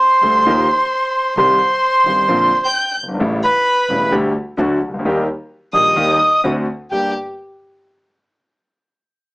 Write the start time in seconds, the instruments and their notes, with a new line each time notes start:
Already playing: bandoneon C5, violin C6
0.22 double bass D2, grand piano D2 D3 G3 A3 D4 A4
0.46 double bass D#2, grand piano D#2 D#3 F3 A#3 D#4 G4
1.36 double bass C2, grand piano C2 C3 D#3 G3 C4 G4, bandoneon C5, violin C6
2.05 double bass G1, grand piano G1 G2 D#3 G3 C4 G4
2.28 grand piano A#1 A#2 D3 A#3 C4 F4, double bass A#1
2.64 bandoneon G5, violin G6
2.98 double bass G1
3.03 grand piano F#1
3.09 grand piano G1
3.14 grand piano G#1
3.19 grand piano A1 A2 C#3 G3 A3 E4, double bass A1
3.43 bandoneon B4, violin B5
3.90 grand piano E1 E2 C#3 G3 A3 E4, double bass E1
4.11 double bass D2, grand piano D2 D3 G3 A3 G4
4.57 double bass D2, grand piano D2 D3 F#3 A3 F#4
4.82 double bass C#2
4.88 grand piano C2
4.94 grand piano C#2
4.99 grand piano D2
5.05 double bass D#2, grand piano D#2 D#3 G3 A#3 G4
5.73 grand piano A#1 A#2 D#3 G3 A#3 G4, double bass A#1, bandoneon D#5, violin D#6
5.96 grand piano D#2 D#3 G3 A#3 G4, double bass D#2
6.44 grand piano D2 D3 A3 C4 F#4, double bass D2
6.91 double bass G1, grand piano G2 A#3 D4 G4, violin G4, bandoneon G5